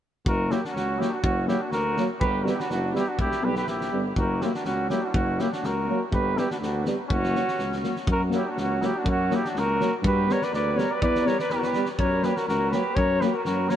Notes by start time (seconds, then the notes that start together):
0.25 F#1 F#4 A#4, kick
0.50 F#3 A#3 E4 G4, snare
0.63 D4 F#4, snare
0.72 C#2 C#4 F#4, snare
0.98 F#3 A#3 E4 G4, snare
1.10 D4 F#4
1.21 F#1 C#4 F#4, kick
1.47 F#3 A#3 E4 G4, snare
1.60 D4 F#4
1.71 D2 F#4 A#4, snare
1.97 F#3 A#3, snare
2.20 G1 G4 B4, kick
2.43 G3 B3 E4 F#4 G4 A#4, snare
2.59 D4 F#4, snare
2.69 F#1 D4 F#4, snare
2.94 G3 B3 E4, snare
2.98 G4
3.09 D4 F#4
3.18 E1 E4 G4, kick
3.32 snare
3.42 B1 G3 B3 G4 B4
3.55 G4 B4, snare
3.67 A#1 E4 G4, snare
3.81 snare
3.92 G1 G3 B3
4.16 F#1 F#4 A#4, kick
4.40 F#3 A#3 E4 G4, snare
4.54 D4 F#4, snare
4.64 C#2 C#4 F#4, snare
4.89 F#3 A#3 E4 G4, snare
5.02 C#4 D4 F#4
5.07 D4 E4 F#4
5.13 F#1 C#4 F#4, kick
5.39 F#3 A#3 E4 G4, snare
5.52 D4 F#4, snare
5.62 C#2 F#4 A#4, snare
5.88 F#3 A#3
6.11 G1 G4 B4, kick
6.35 G3 B3 E4 G4, snare
6.51 D4 F#4, snare
6.60 D2 D4 F#4, snare
6.85 G3 B3, snare
7.08 F#1 C#4 F#4, kick
7.24 snare
7.33 F#3 A#3, snare
7.48 snare
7.58 C#2, snare
7.72 snare
7.82 F#3 A#3, snare
7.96 snare
8.07 F#2, kick
8.11 F#4 A#4
8.30 F#3 A#3 E4, snare
8.37 G4
8.47 D4 F#4
8.56 C#2 C#4 F#4, snare
8.81 F#3 A#3 E4, snare
8.86 G4
8.96 D4 F#4
9.04 F#2, kick
9.08 C#4 F#4
9.30 F#3 A#3 E4, snare
9.36 G4
9.45 D4, snare
9.49 F#4
9.54 C#2, snare
9.58 F#4 A#4
9.79 F#3 A#3, snare
10.02 G2, kick
10.06 G4 B4
10.28 G3 B3 A#4, snare
10.32 C#5
10.42 B4 D5, snare
10.52 D2 B4 D5, snare
10.76 G3 B3 A#4 C#5, snare
10.91 B4 D5
11.02 E2 B4 D5, kick
11.15 snare
11.25 G3 B3 A#4 C#5, snare
11.39 B4 D5, snare
11.50 E2 G4 B4, snare
11.56 F#4 A#4
11.63 B4, snare
11.67 G4
11.73 G3 B3, snare
11.85 snare
11.98 F#2 A#4 C#5, kick
12.23 F#3 A#3 G4 B4, snare
12.36 F#4 A#4, snare
12.47 C#2 F#4 A#4, snare
12.71 F#3 A#3 G4 B4, snare
12.96 F#2 A#4 C#5, kick
13.21 F#3 A#3 G4 B4, snare
13.34 F#4 A#4
13.44 F#2 F#4 A#4, snare
13.68 F#3 A#3 A#4 C#5, snare